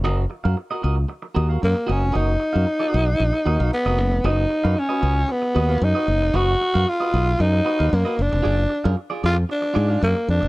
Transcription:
X:1
M:4/4
L:1/16
Q:1/4=114
K:Blyd
V:1 name="Clean electric guitar"
[FAd] z2 [FAe] z [FAd] [FAd] z3 [FAd] [FAe] z2 [FAd] z | [FAd] z2 [FAe] z [FAd] [FAd] z3 [FAd] [FAe] z [FAd] z2 | [FBd] z2 [FBe] z [FBd] [FBd] z3 [FBd] [FBe] z [FBd] z2 | [FBd] z2 [FBe] z [FBd] [FBd] z3 [FBd] [FBe] z [FBd] z2 |
[EG=d] z2 [EGe] z [EGd] [EGd] z3 [EGd] [EGe] z4 |]
V:2 name="Tenor saxophone"
z12 A,2 C2 | D12 B,4 | D4 C4 B,4 D4 | F4 E4 D4 A,2 =D2- |
=D4 z2 E2 D4 A,2 D2 |]
V:3 name="Fingered electric bass" clef=bass
F,,,2 z F,, z2 C,,2 z2 D,,2 F,, z F,,, E,,, | F,,,2 z F,, z2 B,,,2 A,,, z D,, B,,, z E,,, F,,, E,,, | F,,,2 z F,, z2 C,,2 z2 D,,2 F,, z F,,, E,,, | F,,,2 z F,, z2 B,,,2 F,,2 z D,, F,, z F,,, E,,, |
F,,,2 z F,, z2 E,,2 z2 G,,2 F,, z E,, E,,, |]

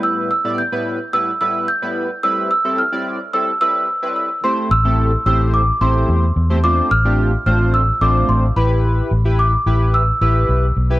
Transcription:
X:1
M:4/4
L:1/16
Q:1/4=109
K:Am
V:1 name="Celesta"
e'2 e'2 g'4 e'2 e'2 g'4 | e'2 e'2 f'4 e'2 e'4 e'2 | c'2 e'4 e'2 d'2 c'4 z2 | d'2 f'4 f'2 e'2 d'2 c'2 b2- |
b4 d'4 e'2 e'4 z2 |]
V:2 name="Analog polysynth"
[A,,G,B,EB]2 z [A,,G,B,Ed] z [A,,G,B,EB]2 z [A,,G,B,EB] z [A,,G,B,EB]2 z [A,,G,B,EB]2 z | [A,,G,CEB]2 z [A,,G,CEA] z [A,,G,CEd]2 z [A,,G,CEA] z [A,,G,CEB]2 z [A,,G,CEB]2 z | [A,CEGc]2 z [A,CEGA]2 z [A,CEGc]3 z [A,CEGc]3 z2 [A,CEGc] | [A,CDFc]2 z [A,CDFG]2 z [A,CDFc]3 z [A,CDFc]3 z [EGB]2- |
[EGB]2 z [EGB]2 z [EGB]3 z [EGB]3 z2 [EGB] |]
V:3 name="Fingered electric bass" clef=bass
z16 | z16 | z2 A,,,4 A,,,4 A,,,2 E,,2 E,,2- | E,,2 A,,,4 A,,,4 A,,,2 A,,,2 A,,,2- |
A,,,2 A,,,4 A,,,4 A,,,2 B,,,2 B,,,2 |]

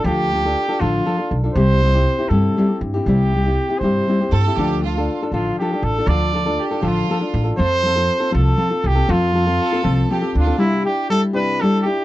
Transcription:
X:1
M:6/8
L:1/16
Q:3/8=80
K:F
V:1 name="Trumpet"
G6 F4- F/2 z3/2 | c6 A4 z2 | G6 c4- c/2 z3/2 | z6 F2 G2 A2 |
d4- d/2 z6 z3/2 | c6 A4 G2 | F8 z2 D2 | [K:C] E2 G2 A2 B2 A3/2 A/2 G2 |]
V:2 name="Violin section"
z12 | z12 | z8 z2 A2 | G2 F3 z6 z |
z4 G2 F4- F z | z12 | z4 A4 G2 F2 | [K:C] z12 |]
V:3 name="Nylon-string guitar"
[D,F,DFA]2 [F,DFA] [DFA]2 [DFA] [D,F,DFA]2 [F,DFA] [DFA]2 [DFA] | [C,G,CEG]2 [G,CEG] [CEG]2 [CEG] [C,G,CEG]2 [G,CEG] [CEG]2 [CEG] | [C,G,CEG]2 [G,CEG] [CEG]2 [CEG] [C,G,CEG]2 [G,CEG] [CEG]2 [CEG] | [D,F,DFA]2 [F,DFA] [DFA]2 [DFA] [D,F,DFA]2 [F,DFA] [DFA]2 [DFA] |
[D,F,DFA]2 [F,DFA] [DFA]2 [DFA] [D,F,DFA]2 [F,DFA] [DFA]2 [DFA] | [F,CFA]2 [F,CFA] [CFA]2 [CFA] [F,CFA]2 [F,CFA] [CFA]2 [CFA] | [F,CFA]2 [F,CFA] [CFA]2 [CFA] [F,CFA]2 [F,CFA] [CFA]2 [CFA] | [K:C] [C,G,DEG]2 [DEG]2 [G,DEG]2 [C,G,DEG]2 [G,DEG]2 [DEG]2 |]
V:4 name="Upright bass" clef=bass
D,,6 A,,,2 z2 =B,,,2 | C,,6 G,,2 z2 G,,2 | C,,6 G,,2 z2 G,,2 | D,,6 A,,,2 z2 A,,,2 |
D,,6 A,,,2 z2 A,,,2 | F,,6 C,,2 z2 C,,2 | F,,6 C,,2 z2 D,,2 | [K:C] z12 |]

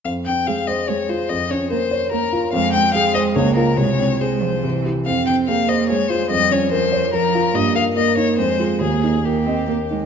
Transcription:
X:1
M:3/4
L:1/8
Q:1/4=144
K:Fm
V:1 name="Violin"
f g f e d c | e d c2 B2 | f g f e d B | d2 c3 z |
f g f e d c | e d c2 B2 | [K:Ebmix] e f e d c2 | A2 G3 z |]
V:2 name="Grand piano"
F,, C A c A F | F,, D B d B F | F,, C A c D,, [FB] | C,, C A c C,, [=EG] |
F,, C A c A F | F,, D B d B F | [K:Ebmix] G,, B, B E F,, [FA] | E,, E B e B E |]
V:3 name="Cello" clef=bass
z2 A,2 A,2 | z2 B,2 B,2 | A,2 A,2 B,2 | A,2 A, F, =E, z |
C2 B,2 A,2 | G,2 F,2 F,2 | [K:Ebmix] B,2 B,2 A,2 | B,2 B, C B, A, |]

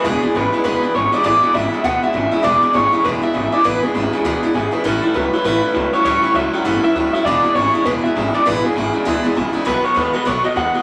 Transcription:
X:1
M:4/4
L:1/8
Q:"Swing" 1/4=200
K:Emix
V:1 name="Clean electric guitar"
G2 B2 B2 c d | d2 e2 f e2 e | d2 c2 B e2 d | B G4- G G B |
A2 B2 B3 c | c2 e f2 e2 e | d2 c2 B e2 d | B G6 z |
B c B B c ^d f2 |]
V:2 name="Steel-string acoustic guitar" clef=bass
[E,,B,,E,G,DE] [E,G,DE] [E,G,DE] [E,G,DE] [E,,B,,E,G,DE] [E,G,DE] [E,G,DE] [E,G,DE] | [E,,B,,E,G,DE] [E,G,DE] [E,G,DE] [E,G,DE] [E,,B,,E,G,DE] [E,G,DE] [E,G,DE] [E,G,DE] | [E,,B,,E,G,DE] [E,G,DE] [E,G,DE] [E,G,DE] [E,,B,,E,G,DE] [E,G,DE] [E,G,DE] [E,G,DE] | [E,,B,,E,G,DE] [E,G,DE] [E,G,DE] [E,G,DE] [E,,B,,E,G,DE] [E,G,DE] [E,G,DE] [E,G,DE] |
[A,,E,=G,CE] [G,CE] [E,G,CE] [G,CE] [A,,E,G,CE] [G,CE] [E,G,CE] [G,CE] | [A,,E,=G,CE] [G,CE] [E,G,CE] [G,CE] [A,,E,G,CE] [G,CE] [E,G,CE] [G,CE] | [E,,B,,E,G,DE] [E,G,DE] [E,G,DE] [E,G,DE] [E,,B,,E,G,DE] [E,G,DE] [E,G,DE] [E,G,DE] | [E,,B,,E,G,DE] [E,G,DE] [E,G,DE] [E,G,DE] [E,,B,,E,G,DE] [E,G,DE] [E,G,DE] [E,G,DE] |
[B,,^D,A,B,F] [A,B,F] [D,A,B,F] [A,B,F] [B,,D,A,B,F] [A,B,F] [D,A,B,F] [A,B,F] |]
V:3 name="Clean electric guitar" clef=bass
[E,,B,,] [E,,B,,] [E,,C,] [E,,C,] [E,,B,,] [E,,B,,] [E,,C,] [E,,C,] | [E,,B,,] [E,,B,,] [E,,C,] [E,,C,] [E,,B,,] [E,,B,,] [E,,C,] [E,,C,] | [E,,B,,] [E,,B,,] [E,,C,] [E,,C,] [E,,B,,] [E,,B,,] [E,,C,] [E,,C,] | [E,,B,,] [E,,B,,] [E,,C,] [E,,C,] [E,,B,,] [E,,B,,] [E,,C,] [E,,C,] |
[A,,E,] [A,,E,] [A,,F,] [A,,F,] [A,,E,] [A,,E,] [A,,F,] [A,,F,] | [A,,E,] [A,,E,] [A,,F,] [A,,F,] [A,,E,] [A,,E,] [A,,F,] [A,,F,] | [E,,B,,] [E,,B,,] [E,,C,] [E,,C,] [E,,B,,] [E,,B,,] [E,,C,] [E,,C,] | [E,,B,,] [E,,B,,] [E,,C,] [E,,C,] [E,,B,,] [E,,B,,] [E,,C,] [E,,C,] |
[B,,F,] [B,,F,] [B,,G,] [B,,G,] [B,,F,] [B,,F,] [B,,G,] [B,,G,] |]
V:4 name="Upright bass" clef=bass
E,,, z G,,, z E,,, z G,,, z | A,,, z G,,, z D,, z G,,, z | E,,, z G,,, z E,,, z G,,, z | A,,, z G,,, z D,, z G,,, z |
A,,, z C,, z A,,, z C,, z | D,, z C,, z =G,,, z D,, z | E,,, z G,,, z E,,, z G,,, z | A,,, z G,,, z D,, z ^A,,, z |
B,,, z ^D,, z B,,, z D,, z |]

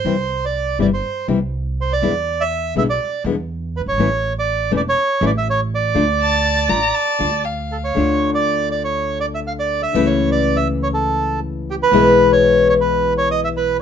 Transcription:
X:1
M:4/4
L:1/16
Q:1/4=122
K:Dm
V:1 name="Violin"
z16 | z16 | z16 | z2 a4 b2 a4 f4 |
z16 | z16 | z16 |]
V:2 name="Bandoneon"
c3 d3 d c3 z4 c d- | d3 e3 e d3 z4 =B ^c- | ^c3 d3 d c3 d e c2 d2- | d12 z2 A ^c- |
^c3 d3 d c3 d e f d2 e- | e ^c2 d2 e2 c A4 z2 G =B- | =B3 ^c3 c B3 c _e =e B2 z |]
V:3 name="Nylon-string guitar"
[C,E,G,CE]2 z4 [C,E,G,CE]2 z2 [C,E,G,CE]2 z4 | [=B,,D,^G,=B,E]2 z4 [B,,D,G,B,E]2 z2 [B,,D,G,B,E]2 z4 | [E,A,^CE]2 z4 [E,A,CE]2 z2 [E,A,CE]2 z4 | [D,A,DF]2 z4 [D,A,DF]2 z2 [D,A,DF]2 z4 |
[D,A,DF]16 | [^C,E,A,^CE]16 | [=B,,E,^G,=B,E]16 |]
V:4 name="Upright bass" clef=bass
C,,4- C,,3/2 z/2 G,,,3/2 z2 z/2 C,,4- C,,3/2 z/2 | E,,4- E,,3/2 z/2 =B,,,3/2 z2 z/2 E,,4- E,,/2 ^F,,,/2 G,,,/2 ^G,,,/2 | A,,,4- A,,,3/2 z/2 E,,,3/2 z2 z/2 A,,,4- A,,,3/2 z/2 | D,,4- D,,3/2 z/2 A,,,3/2 z2 z/2 D,,4- D,,3/2 z/2 |
D,,12- D,,3 z | ^C,,12- C,,3 z | =B,,,12- B,,,3 z |]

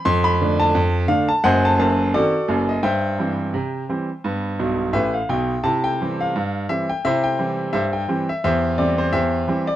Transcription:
X:1
M:2/4
L:1/16
Q:"Swing 16ths" 1/4=86
K:C
V:1 name="Grand piano"
c' b2 a3 f a | [c^d^f] a a2 [^FA=d]3 ^d | [ceg]8- | [ceg]4 [GBe] f g2 |
a g2 f3 e g | [Gce] g3 [Gce] g2 e | [Gce]2 d c [Gce]3 d |]
V:2 name="Grand piano" clef=bass
F,,2 [D,A,D]2 F,,2 [D,A,D]2 | [^F,,,^F,,]2 [F,,,F,,]2 [^D,C]2 [F,,,F,,]2 | G,,2 [E,G,C]2 C,2 [E,G,C]2 | [G,,B,]2 [B,,,B,,]2 [A,,,A,,]2 [B,,,B,,]2 |
[C,E]2 [E,G,C]2 G,,2 [E,G,C]2 | [C,E]2 [E,G,C]2 G,,2 [E,G,C]2 | E,,2 [E,G,C]2 E,,2 [E,G,C]2 |]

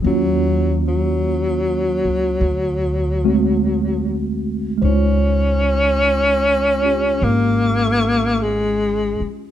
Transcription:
X:1
M:4/4
L:1/8
Q:"Swing" 1/4=50
K:Dblyd
V:1 name="Tine electric piano"
[_G,B,DF]4 z [^G,=A,C^F]3 | [A,EFc]3 [DFG]4- [DFG] |]
V:2 name="Tenor saxophone" clef=bass
_G, G,6 z | D4 B,2 A,2 |]
V:3 name="Upright bass" clef=bass
E,,3 D,, =D,,4 | D,,4 A,,,3 z |]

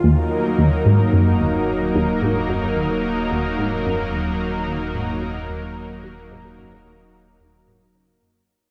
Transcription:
X:1
M:4/4
L:1/8
Q:1/4=110
K:Ebm
V:1 name="Analog synth pad"
[G,B,EB]8- | [G,B,EB]8- | [G,B,EB]8- | [G,B,EB]8 |]
V:2 name="Synth arpeggio sound" clef=bass
E,, z E,, A,, G,, E,, z E,, | A,, G,, E,, z E,, A,, G,, E,, | z E,, A,, G,, E,, z E,, A,, | G,, E,, z E,, A,, D, G,, z |]
V:3 name="Analog synth bass" clef=bass
E,,,8- | E,,,8- | E,,,8- | E,,,8 |]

